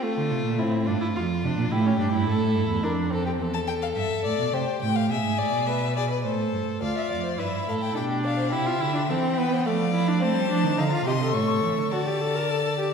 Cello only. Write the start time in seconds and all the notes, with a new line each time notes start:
0.17 D3
0.31 C3
0.45 A#2
0.59 A2
0.88 G2
1.16 F2
1.44 C3
1.58 A#2
1.71 A2
1.99 G2
2.27 A2
2.55 G2
2.68 E2
2.83 F2
3.39 E2
3.96 G2
4.25 A2
4.39 B2
4.53 C3
4.81 A2
5.10 B2
5.24 G#2
5.38 A2
5.53 B2
6.25 A2
6.53 G2
6.82 D2
7.10 F2
7.39 G2
7.67 A2
7.96 B2
8.52 C3
8.80 D3
9.09 E3
9.65 F3
10.22 A3
10.36 G3
10.50 F3
10.64 D#3
10.77 D3
11.06 C3
11.34 A2
11.63 E3
11.77 D3
11.91 D3